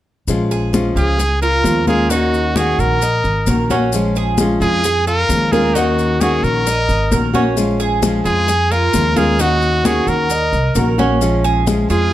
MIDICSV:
0, 0, Header, 1, 7, 480
1, 0, Start_track
1, 0, Key_signature, -5, "minor"
1, 0, Tempo, 455581
1, 297, Time_signature, 4, 2, 24, 8
1, 12783, End_track
2, 0, Start_track
2, 0, Title_t, "Trumpet"
2, 0, Program_c, 0, 56
2, 1022, Note_on_c, 0, 68, 97
2, 1466, Note_off_c, 0, 68, 0
2, 1497, Note_on_c, 0, 70, 106
2, 1944, Note_off_c, 0, 70, 0
2, 1982, Note_on_c, 0, 68, 93
2, 2214, Note_on_c, 0, 66, 90
2, 2230, Note_off_c, 0, 68, 0
2, 2706, Note_on_c, 0, 68, 92
2, 2722, Note_off_c, 0, 66, 0
2, 2946, Note_on_c, 0, 70, 98
2, 2962, Note_off_c, 0, 68, 0
2, 3903, Note_off_c, 0, 70, 0
2, 4860, Note_on_c, 0, 68, 100
2, 5306, Note_off_c, 0, 68, 0
2, 5343, Note_on_c, 0, 70, 107
2, 5814, Note_on_c, 0, 68, 93
2, 5830, Note_off_c, 0, 70, 0
2, 6053, Note_on_c, 0, 66, 90
2, 6069, Note_off_c, 0, 68, 0
2, 6541, Note_on_c, 0, 68, 87
2, 6556, Note_off_c, 0, 66, 0
2, 6781, Note_on_c, 0, 70, 94
2, 6796, Note_off_c, 0, 68, 0
2, 7740, Note_off_c, 0, 70, 0
2, 8696, Note_on_c, 0, 68, 100
2, 9180, Note_on_c, 0, 70, 109
2, 9196, Note_off_c, 0, 68, 0
2, 9663, Note_on_c, 0, 68, 97
2, 9679, Note_off_c, 0, 70, 0
2, 9911, Note_on_c, 0, 66, 98
2, 9927, Note_off_c, 0, 68, 0
2, 10386, Note_on_c, 0, 68, 90
2, 10402, Note_off_c, 0, 66, 0
2, 10624, Note_on_c, 0, 70, 95
2, 10640, Note_off_c, 0, 68, 0
2, 11579, Note_off_c, 0, 70, 0
2, 12543, Note_on_c, 0, 68, 96
2, 12783, Note_off_c, 0, 68, 0
2, 12783, End_track
3, 0, Start_track
3, 0, Title_t, "Cuban tres"
3, 0, Program_c, 1, 25
3, 540, Note_on_c, 1, 68, 73
3, 1005, Note_off_c, 1, 68, 0
3, 1020, Note_on_c, 1, 65, 66
3, 1252, Note_off_c, 1, 65, 0
3, 1258, Note_on_c, 1, 68, 69
3, 1491, Note_off_c, 1, 68, 0
3, 1501, Note_on_c, 1, 65, 69
3, 1965, Note_off_c, 1, 65, 0
3, 1976, Note_on_c, 1, 70, 67
3, 2210, Note_off_c, 1, 70, 0
3, 2221, Note_on_c, 1, 63, 78
3, 2686, Note_off_c, 1, 63, 0
3, 2705, Note_on_c, 1, 66, 69
3, 3168, Note_off_c, 1, 66, 0
3, 3184, Note_on_c, 1, 75, 67
3, 3647, Note_off_c, 1, 75, 0
3, 3663, Note_on_c, 1, 70, 68
3, 3894, Note_off_c, 1, 70, 0
3, 3905, Note_on_c, 1, 61, 81
3, 4368, Note_off_c, 1, 61, 0
3, 4389, Note_on_c, 1, 68, 71
3, 4850, Note_off_c, 1, 68, 0
3, 4864, Note_on_c, 1, 65, 67
3, 5095, Note_off_c, 1, 65, 0
3, 5112, Note_on_c, 1, 68, 73
3, 5339, Note_off_c, 1, 68, 0
3, 5345, Note_on_c, 1, 65, 72
3, 5808, Note_off_c, 1, 65, 0
3, 5825, Note_on_c, 1, 70, 74
3, 6055, Note_off_c, 1, 70, 0
3, 6061, Note_on_c, 1, 63, 81
3, 6526, Note_off_c, 1, 63, 0
3, 6552, Note_on_c, 1, 66, 67
3, 7012, Note_off_c, 1, 66, 0
3, 7026, Note_on_c, 1, 75, 72
3, 7488, Note_off_c, 1, 75, 0
3, 7503, Note_on_c, 1, 70, 68
3, 7734, Note_off_c, 1, 70, 0
3, 7740, Note_on_c, 1, 61, 82
3, 8205, Note_off_c, 1, 61, 0
3, 8216, Note_on_c, 1, 68, 73
3, 8683, Note_off_c, 1, 68, 0
3, 8697, Note_on_c, 1, 65, 67
3, 8931, Note_off_c, 1, 65, 0
3, 8935, Note_on_c, 1, 68, 72
3, 9170, Note_off_c, 1, 68, 0
3, 9182, Note_on_c, 1, 65, 71
3, 9645, Note_off_c, 1, 65, 0
3, 9656, Note_on_c, 1, 70, 72
3, 9889, Note_off_c, 1, 70, 0
3, 9899, Note_on_c, 1, 63, 82
3, 10364, Note_off_c, 1, 63, 0
3, 10379, Note_on_c, 1, 66, 70
3, 10843, Note_off_c, 1, 66, 0
3, 10861, Note_on_c, 1, 75, 67
3, 11324, Note_off_c, 1, 75, 0
3, 11334, Note_on_c, 1, 70, 70
3, 11568, Note_off_c, 1, 70, 0
3, 11579, Note_on_c, 1, 61, 86
3, 12043, Note_off_c, 1, 61, 0
3, 12057, Note_on_c, 1, 68, 76
3, 12522, Note_off_c, 1, 68, 0
3, 12538, Note_on_c, 1, 65, 72
3, 12769, Note_off_c, 1, 65, 0
3, 12783, End_track
4, 0, Start_track
4, 0, Title_t, "Nylon-string guitar"
4, 0, Program_c, 2, 24
4, 295, Note_on_c, 2, 53, 64
4, 304, Note_on_c, 2, 56, 80
4, 312, Note_on_c, 2, 61, 74
4, 316, Note_on_c, 2, 65, 75
4, 755, Note_off_c, 2, 53, 0
4, 767, Note_off_c, 2, 56, 0
4, 767, Note_on_c, 2, 53, 70
4, 775, Note_off_c, 2, 61, 0
4, 777, Note_off_c, 2, 65, 0
4, 780, Note_on_c, 2, 56, 73
4, 786, Note_on_c, 2, 61, 76
4, 791, Note_on_c, 2, 65, 76
4, 1232, Note_off_c, 2, 53, 0
4, 1239, Note_off_c, 2, 56, 0
4, 1243, Note_off_c, 2, 61, 0
4, 1245, Note_off_c, 2, 65, 0
4, 1741, Note_on_c, 2, 53, 46
4, 1750, Note_on_c, 2, 56, 44
4, 1755, Note_on_c, 2, 61, 48
4, 1761, Note_on_c, 2, 65, 52
4, 1960, Note_off_c, 2, 65, 0
4, 1968, Note_off_c, 2, 61, 0
4, 1970, Note_off_c, 2, 53, 0
4, 1973, Note_on_c, 2, 65, 74
4, 1974, Note_off_c, 2, 56, 0
4, 1980, Note_on_c, 2, 61, 70
4, 1994, Note_on_c, 2, 56, 60
4, 2206, Note_off_c, 2, 65, 0
4, 2210, Note_off_c, 2, 61, 0
4, 2210, Note_on_c, 2, 51, 70
4, 2214, Note_off_c, 2, 56, 0
4, 2218, Note_on_c, 2, 58, 74
4, 2225, Note_on_c, 2, 61, 77
4, 2233, Note_on_c, 2, 66, 75
4, 2682, Note_off_c, 2, 51, 0
4, 2689, Note_off_c, 2, 58, 0
4, 2692, Note_off_c, 2, 61, 0
4, 2695, Note_on_c, 2, 51, 67
4, 2696, Note_off_c, 2, 66, 0
4, 2703, Note_on_c, 2, 58, 73
4, 2709, Note_on_c, 2, 61, 77
4, 2712, Note_on_c, 2, 66, 74
4, 3167, Note_off_c, 2, 51, 0
4, 3172, Note_off_c, 2, 58, 0
4, 3174, Note_off_c, 2, 61, 0
4, 3176, Note_off_c, 2, 66, 0
4, 3664, Note_on_c, 2, 51, 48
4, 3671, Note_on_c, 2, 58, 46
4, 3677, Note_on_c, 2, 61, 53
4, 3680, Note_on_c, 2, 66, 53
4, 3888, Note_off_c, 2, 66, 0
4, 3892, Note_off_c, 2, 51, 0
4, 3896, Note_off_c, 2, 58, 0
4, 3899, Note_off_c, 2, 61, 0
4, 3900, Note_on_c, 2, 66, 70
4, 3911, Note_on_c, 2, 61, 68
4, 3919, Note_on_c, 2, 58, 58
4, 4130, Note_off_c, 2, 66, 0
4, 4136, Note_off_c, 2, 61, 0
4, 4140, Note_off_c, 2, 58, 0
4, 4148, Note_on_c, 2, 53, 72
4, 4157, Note_on_c, 2, 56, 70
4, 4164, Note_on_c, 2, 61, 81
4, 4170, Note_on_c, 2, 65, 75
4, 4614, Note_off_c, 2, 53, 0
4, 4619, Note_off_c, 2, 56, 0
4, 4622, Note_off_c, 2, 61, 0
4, 4626, Note_off_c, 2, 65, 0
4, 4627, Note_on_c, 2, 53, 75
4, 4634, Note_on_c, 2, 56, 75
4, 4642, Note_on_c, 2, 61, 84
4, 4648, Note_on_c, 2, 65, 84
4, 5090, Note_off_c, 2, 53, 0
4, 5093, Note_off_c, 2, 56, 0
4, 5097, Note_off_c, 2, 61, 0
4, 5099, Note_off_c, 2, 65, 0
4, 5578, Note_on_c, 2, 53, 49
4, 5583, Note_on_c, 2, 56, 54
4, 5593, Note_on_c, 2, 61, 50
4, 5598, Note_on_c, 2, 65, 53
4, 5809, Note_off_c, 2, 53, 0
4, 5809, Note_off_c, 2, 65, 0
4, 5812, Note_off_c, 2, 56, 0
4, 5817, Note_off_c, 2, 61, 0
4, 5821, Note_on_c, 2, 65, 70
4, 5837, Note_on_c, 2, 61, 68
4, 5842, Note_on_c, 2, 56, 58
4, 6051, Note_off_c, 2, 65, 0
4, 6059, Note_off_c, 2, 61, 0
4, 6060, Note_on_c, 2, 51, 66
4, 6062, Note_off_c, 2, 56, 0
4, 6067, Note_on_c, 2, 58, 81
4, 6073, Note_on_c, 2, 61, 84
4, 6080, Note_on_c, 2, 66, 84
4, 6528, Note_off_c, 2, 51, 0
4, 6534, Note_off_c, 2, 58, 0
4, 6537, Note_off_c, 2, 61, 0
4, 6540, Note_off_c, 2, 66, 0
4, 6540, Note_on_c, 2, 51, 68
4, 6550, Note_on_c, 2, 58, 75
4, 6555, Note_on_c, 2, 61, 76
4, 6561, Note_on_c, 2, 66, 77
4, 7010, Note_off_c, 2, 51, 0
4, 7015, Note_off_c, 2, 58, 0
4, 7018, Note_off_c, 2, 61, 0
4, 7021, Note_off_c, 2, 66, 0
4, 7487, Note_on_c, 2, 51, 49
4, 7500, Note_on_c, 2, 58, 53
4, 7504, Note_on_c, 2, 61, 50
4, 7513, Note_on_c, 2, 66, 52
4, 7714, Note_off_c, 2, 66, 0
4, 7724, Note_off_c, 2, 51, 0
4, 7727, Note_on_c, 2, 66, 72
4, 7728, Note_off_c, 2, 61, 0
4, 7730, Note_off_c, 2, 58, 0
4, 7741, Note_on_c, 2, 61, 63
4, 7747, Note_on_c, 2, 58, 59
4, 7964, Note_off_c, 2, 66, 0
4, 7969, Note_on_c, 2, 53, 69
4, 7970, Note_off_c, 2, 58, 0
4, 7970, Note_off_c, 2, 61, 0
4, 7974, Note_on_c, 2, 56, 72
4, 7983, Note_on_c, 2, 61, 71
4, 7989, Note_on_c, 2, 65, 81
4, 8438, Note_off_c, 2, 53, 0
4, 8447, Note_off_c, 2, 56, 0
4, 8451, Note_off_c, 2, 61, 0
4, 8451, Note_on_c, 2, 53, 76
4, 8454, Note_off_c, 2, 65, 0
4, 8458, Note_on_c, 2, 56, 69
4, 8464, Note_on_c, 2, 61, 74
4, 8471, Note_on_c, 2, 65, 77
4, 8919, Note_off_c, 2, 53, 0
4, 8924, Note_off_c, 2, 56, 0
4, 8924, Note_off_c, 2, 61, 0
4, 8929, Note_off_c, 2, 65, 0
4, 9413, Note_on_c, 2, 53, 45
4, 9420, Note_on_c, 2, 56, 50
4, 9426, Note_on_c, 2, 61, 53
4, 9435, Note_on_c, 2, 65, 54
4, 9639, Note_off_c, 2, 65, 0
4, 9646, Note_off_c, 2, 53, 0
4, 9649, Note_off_c, 2, 56, 0
4, 9652, Note_off_c, 2, 61, 0
4, 9652, Note_on_c, 2, 65, 79
4, 9663, Note_on_c, 2, 61, 66
4, 9674, Note_on_c, 2, 56, 56
4, 9885, Note_off_c, 2, 65, 0
4, 9891, Note_off_c, 2, 61, 0
4, 9896, Note_off_c, 2, 56, 0
4, 9897, Note_on_c, 2, 51, 68
4, 9905, Note_on_c, 2, 58, 72
4, 9908, Note_on_c, 2, 61, 77
4, 9916, Note_on_c, 2, 66, 84
4, 10356, Note_off_c, 2, 51, 0
4, 10368, Note_off_c, 2, 58, 0
4, 10369, Note_on_c, 2, 51, 74
4, 10373, Note_off_c, 2, 61, 0
4, 10377, Note_off_c, 2, 66, 0
4, 10381, Note_on_c, 2, 58, 75
4, 10386, Note_on_c, 2, 61, 72
4, 10389, Note_on_c, 2, 66, 79
4, 10843, Note_off_c, 2, 51, 0
4, 10845, Note_off_c, 2, 58, 0
4, 10849, Note_off_c, 2, 61, 0
4, 10851, Note_off_c, 2, 66, 0
4, 11337, Note_on_c, 2, 51, 45
4, 11346, Note_on_c, 2, 58, 51
4, 11346, Note_on_c, 2, 61, 52
4, 11356, Note_on_c, 2, 66, 59
4, 11555, Note_off_c, 2, 66, 0
4, 11567, Note_off_c, 2, 51, 0
4, 11568, Note_on_c, 2, 66, 74
4, 11571, Note_off_c, 2, 58, 0
4, 11572, Note_off_c, 2, 61, 0
4, 11585, Note_on_c, 2, 61, 68
4, 11594, Note_on_c, 2, 58, 60
4, 11802, Note_off_c, 2, 66, 0
4, 11811, Note_off_c, 2, 61, 0
4, 11811, Note_on_c, 2, 53, 67
4, 11812, Note_off_c, 2, 58, 0
4, 11816, Note_on_c, 2, 56, 72
4, 11822, Note_on_c, 2, 61, 78
4, 11830, Note_on_c, 2, 65, 85
4, 12276, Note_off_c, 2, 53, 0
4, 12286, Note_off_c, 2, 56, 0
4, 12289, Note_off_c, 2, 61, 0
4, 12289, Note_on_c, 2, 53, 72
4, 12293, Note_off_c, 2, 65, 0
4, 12298, Note_on_c, 2, 56, 77
4, 12301, Note_on_c, 2, 61, 84
4, 12309, Note_on_c, 2, 65, 83
4, 12762, Note_off_c, 2, 53, 0
4, 12765, Note_off_c, 2, 56, 0
4, 12768, Note_off_c, 2, 61, 0
4, 12772, Note_off_c, 2, 65, 0
4, 12783, End_track
5, 0, Start_track
5, 0, Title_t, "Upright bass"
5, 0, Program_c, 3, 32
5, 290, Note_on_c, 3, 34, 82
5, 972, Note_off_c, 3, 34, 0
5, 1008, Note_on_c, 3, 37, 87
5, 1691, Note_off_c, 3, 37, 0
5, 1728, Note_on_c, 3, 39, 91
5, 2867, Note_off_c, 3, 39, 0
5, 2933, Note_on_c, 3, 34, 88
5, 3382, Note_off_c, 3, 34, 0
5, 3414, Note_on_c, 3, 32, 70
5, 3640, Note_off_c, 3, 32, 0
5, 3654, Note_on_c, 3, 34, 87
5, 4791, Note_off_c, 3, 34, 0
5, 4853, Note_on_c, 3, 41, 87
5, 5534, Note_off_c, 3, 41, 0
5, 5575, Note_on_c, 3, 39, 90
5, 6711, Note_off_c, 3, 39, 0
5, 6769, Note_on_c, 3, 34, 82
5, 7220, Note_off_c, 3, 34, 0
5, 7256, Note_on_c, 3, 32, 72
5, 7481, Note_off_c, 3, 32, 0
5, 7495, Note_on_c, 3, 34, 90
5, 8631, Note_off_c, 3, 34, 0
5, 8694, Note_on_c, 3, 41, 87
5, 9374, Note_off_c, 3, 41, 0
5, 9415, Note_on_c, 3, 39, 89
5, 10550, Note_off_c, 3, 39, 0
5, 10607, Note_on_c, 3, 39, 90
5, 11058, Note_off_c, 3, 39, 0
5, 11090, Note_on_c, 3, 36, 73
5, 11316, Note_off_c, 3, 36, 0
5, 11329, Note_on_c, 3, 34, 94
5, 12466, Note_off_c, 3, 34, 0
5, 12533, Note_on_c, 3, 41, 84
5, 12783, Note_off_c, 3, 41, 0
5, 12783, End_track
6, 0, Start_track
6, 0, Title_t, "Muted nylon-string guitar strokes"
6, 1245, Note_on_c, 9, 29, 53
6, 1350, Note_off_c, 9, 29, 0
6, 3182, Note_on_c, 9, 29, 66
6, 3287, Note_off_c, 9, 29, 0
6, 5102, Note_on_c, 9, 29, 60
6, 5208, Note_off_c, 9, 29, 0
6, 7027, Note_on_c, 9, 29, 60
6, 7133, Note_off_c, 9, 29, 0
6, 8931, Note_on_c, 9, 29, 61
6, 9037, Note_off_c, 9, 29, 0
6, 10858, Note_on_c, 9, 29, 58
6, 10963, Note_off_c, 9, 29, 0
6, 12783, End_track
7, 0, Start_track
7, 0, Title_t, "Drums"
7, 292, Note_on_c, 9, 70, 65
7, 297, Note_on_c, 9, 63, 34
7, 397, Note_off_c, 9, 70, 0
7, 403, Note_off_c, 9, 63, 0
7, 541, Note_on_c, 9, 70, 27
7, 543, Note_on_c, 9, 63, 32
7, 646, Note_off_c, 9, 70, 0
7, 648, Note_off_c, 9, 63, 0
7, 776, Note_on_c, 9, 70, 64
7, 779, Note_on_c, 9, 63, 94
7, 881, Note_off_c, 9, 70, 0
7, 885, Note_off_c, 9, 63, 0
7, 1019, Note_on_c, 9, 70, 29
7, 1021, Note_on_c, 9, 63, 33
7, 1125, Note_off_c, 9, 70, 0
7, 1126, Note_off_c, 9, 63, 0
7, 1259, Note_on_c, 9, 63, 34
7, 1261, Note_on_c, 9, 70, 67
7, 1364, Note_off_c, 9, 63, 0
7, 1366, Note_off_c, 9, 70, 0
7, 1493, Note_on_c, 9, 63, 34
7, 1501, Note_on_c, 9, 70, 27
7, 1598, Note_off_c, 9, 63, 0
7, 1607, Note_off_c, 9, 70, 0
7, 1732, Note_on_c, 9, 63, 78
7, 1742, Note_on_c, 9, 70, 66
7, 1837, Note_off_c, 9, 63, 0
7, 1847, Note_off_c, 9, 70, 0
7, 1972, Note_on_c, 9, 63, 80
7, 1983, Note_on_c, 9, 70, 27
7, 2077, Note_off_c, 9, 63, 0
7, 2088, Note_off_c, 9, 70, 0
7, 2216, Note_on_c, 9, 70, 63
7, 2220, Note_on_c, 9, 63, 33
7, 2322, Note_off_c, 9, 70, 0
7, 2325, Note_off_c, 9, 63, 0
7, 2456, Note_on_c, 9, 63, 35
7, 2464, Note_on_c, 9, 70, 28
7, 2561, Note_off_c, 9, 63, 0
7, 2570, Note_off_c, 9, 70, 0
7, 2694, Note_on_c, 9, 63, 87
7, 2707, Note_on_c, 9, 70, 66
7, 2800, Note_off_c, 9, 63, 0
7, 2812, Note_off_c, 9, 70, 0
7, 2938, Note_on_c, 9, 63, 34
7, 2946, Note_on_c, 9, 70, 29
7, 3043, Note_off_c, 9, 63, 0
7, 3052, Note_off_c, 9, 70, 0
7, 3180, Note_on_c, 9, 70, 70
7, 3185, Note_on_c, 9, 63, 36
7, 3285, Note_off_c, 9, 70, 0
7, 3290, Note_off_c, 9, 63, 0
7, 3418, Note_on_c, 9, 63, 33
7, 3419, Note_on_c, 9, 70, 28
7, 3524, Note_off_c, 9, 63, 0
7, 3524, Note_off_c, 9, 70, 0
7, 3652, Note_on_c, 9, 70, 68
7, 3656, Note_on_c, 9, 63, 73
7, 3757, Note_off_c, 9, 70, 0
7, 3761, Note_off_c, 9, 63, 0
7, 3900, Note_on_c, 9, 70, 28
7, 3901, Note_on_c, 9, 63, 79
7, 4005, Note_off_c, 9, 70, 0
7, 4007, Note_off_c, 9, 63, 0
7, 4137, Note_on_c, 9, 70, 65
7, 4242, Note_off_c, 9, 70, 0
7, 4374, Note_on_c, 9, 63, 34
7, 4380, Note_on_c, 9, 70, 29
7, 4479, Note_off_c, 9, 63, 0
7, 4485, Note_off_c, 9, 70, 0
7, 4612, Note_on_c, 9, 70, 71
7, 4613, Note_on_c, 9, 63, 86
7, 4718, Note_off_c, 9, 70, 0
7, 4719, Note_off_c, 9, 63, 0
7, 4860, Note_on_c, 9, 63, 32
7, 4861, Note_on_c, 9, 70, 29
7, 4965, Note_off_c, 9, 63, 0
7, 4966, Note_off_c, 9, 70, 0
7, 5100, Note_on_c, 9, 70, 65
7, 5103, Note_on_c, 9, 63, 34
7, 5205, Note_off_c, 9, 70, 0
7, 5208, Note_off_c, 9, 63, 0
7, 5339, Note_on_c, 9, 63, 34
7, 5346, Note_on_c, 9, 70, 27
7, 5444, Note_off_c, 9, 63, 0
7, 5452, Note_off_c, 9, 70, 0
7, 5581, Note_on_c, 9, 70, 71
7, 5582, Note_on_c, 9, 63, 80
7, 5686, Note_off_c, 9, 70, 0
7, 5688, Note_off_c, 9, 63, 0
7, 5822, Note_on_c, 9, 63, 80
7, 5832, Note_on_c, 9, 70, 27
7, 5927, Note_off_c, 9, 63, 0
7, 5937, Note_off_c, 9, 70, 0
7, 6063, Note_on_c, 9, 63, 34
7, 6067, Note_on_c, 9, 70, 65
7, 6169, Note_off_c, 9, 63, 0
7, 6173, Note_off_c, 9, 70, 0
7, 6305, Note_on_c, 9, 63, 32
7, 6307, Note_on_c, 9, 70, 28
7, 6411, Note_off_c, 9, 63, 0
7, 6413, Note_off_c, 9, 70, 0
7, 6542, Note_on_c, 9, 70, 67
7, 6547, Note_on_c, 9, 63, 86
7, 6647, Note_off_c, 9, 70, 0
7, 6652, Note_off_c, 9, 63, 0
7, 6783, Note_on_c, 9, 70, 29
7, 6786, Note_on_c, 9, 63, 32
7, 6888, Note_off_c, 9, 70, 0
7, 6892, Note_off_c, 9, 63, 0
7, 7017, Note_on_c, 9, 63, 37
7, 7025, Note_on_c, 9, 70, 67
7, 7122, Note_off_c, 9, 63, 0
7, 7131, Note_off_c, 9, 70, 0
7, 7259, Note_on_c, 9, 70, 27
7, 7260, Note_on_c, 9, 63, 35
7, 7364, Note_off_c, 9, 70, 0
7, 7366, Note_off_c, 9, 63, 0
7, 7500, Note_on_c, 9, 63, 79
7, 7500, Note_on_c, 9, 70, 69
7, 7605, Note_off_c, 9, 63, 0
7, 7605, Note_off_c, 9, 70, 0
7, 7736, Note_on_c, 9, 70, 27
7, 7737, Note_on_c, 9, 63, 84
7, 7841, Note_off_c, 9, 70, 0
7, 7843, Note_off_c, 9, 63, 0
7, 7976, Note_on_c, 9, 70, 67
7, 7981, Note_on_c, 9, 63, 33
7, 8082, Note_off_c, 9, 70, 0
7, 8086, Note_off_c, 9, 63, 0
7, 8218, Note_on_c, 9, 63, 33
7, 8219, Note_on_c, 9, 70, 27
7, 8324, Note_off_c, 9, 63, 0
7, 8324, Note_off_c, 9, 70, 0
7, 8455, Note_on_c, 9, 70, 70
7, 8458, Note_on_c, 9, 63, 91
7, 8561, Note_off_c, 9, 70, 0
7, 8563, Note_off_c, 9, 63, 0
7, 8698, Note_on_c, 9, 63, 32
7, 8700, Note_on_c, 9, 70, 29
7, 8804, Note_off_c, 9, 63, 0
7, 8806, Note_off_c, 9, 70, 0
7, 8937, Note_on_c, 9, 63, 35
7, 8941, Note_on_c, 9, 70, 68
7, 9043, Note_off_c, 9, 63, 0
7, 9047, Note_off_c, 9, 70, 0
7, 9183, Note_on_c, 9, 63, 33
7, 9186, Note_on_c, 9, 70, 27
7, 9288, Note_off_c, 9, 63, 0
7, 9291, Note_off_c, 9, 70, 0
7, 9415, Note_on_c, 9, 70, 69
7, 9419, Note_on_c, 9, 63, 80
7, 9521, Note_off_c, 9, 70, 0
7, 9524, Note_off_c, 9, 63, 0
7, 9656, Note_on_c, 9, 63, 79
7, 9657, Note_on_c, 9, 70, 27
7, 9761, Note_off_c, 9, 63, 0
7, 9763, Note_off_c, 9, 70, 0
7, 9896, Note_on_c, 9, 70, 63
7, 9898, Note_on_c, 9, 63, 34
7, 10002, Note_off_c, 9, 70, 0
7, 10004, Note_off_c, 9, 63, 0
7, 10137, Note_on_c, 9, 70, 28
7, 10143, Note_on_c, 9, 63, 33
7, 10242, Note_off_c, 9, 70, 0
7, 10248, Note_off_c, 9, 63, 0
7, 10379, Note_on_c, 9, 63, 94
7, 10379, Note_on_c, 9, 70, 68
7, 10484, Note_off_c, 9, 70, 0
7, 10485, Note_off_c, 9, 63, 0
7, 10617, Note_on_c, 9, 70, 30
7, 10624, Note_on_c, 9, 63, 33
7, 10722, Note_off_c, 9, 70, 0
7, 10730, Note_off_c, 9, 63, 0
7, 10850, Note_on_c, 9, 70, 69
7, 10859, Note_on_c, 9, 63, 34
7, 10956, Note_off_c, 9, 70, 0
7, 10965, Note_off_c, 9, 63, 0
7, 11092, Note_on_c, 9, 70, 29
7, 11101, Note_on_c, 9, 63, 34
7, 11198, Note_off_c, 9, 70, 0
7, 11206, Note_off_c, 9, 63, 0
7, 11327, Note_on_c, 9, 70, 73
7, 11340, Note_on_c, 9, 63, 77
7, 11433, Note_off_c, 9, 70, 0
7, 11445, Note_off_c, 9, 63, 0
7, 11574, Note_on_c, 9, 70, 27
7, 11582, Note_on_c, 9, 63, 80
7, 11680, Note_off_c, 9, 70, 0
7, 11687, Note_off_c, 9, 63, 0
7, 11815, Note_on_c, 9, 70, 67
7, 11820, Note_on_c, 9, 63, 34
7, 11920, Note_off_c, 9, 70, 0
7, 11925, Note_off_c, 9, 63, 0
7, 12057, Note_on_c, 9, 63, 34
7, 12060, Note_on_c, 9, 70, 28
7, 12162, Note_off_c, 9, 63, 0
7, 12165, Note_off_c, 9, 70, 0
7, 12296, Note_on_c, 9, 70, 72
7, 12299, Note_on_c, 9, 63, 96
7, 12401, Note_off_c, 9, 70, 0
7, 12404, Note_off_c, 9, 63, 0
7, 12534, Note_on_c, 9, 63, 34
7, 12538, Note_on_c, 9, 70, 31
7, 12640, Note_off_c, 9, 63, 0
7, 12643, Note_off_c, 9, 70, 0
7, 12783, End_track
0, 0, End_of_file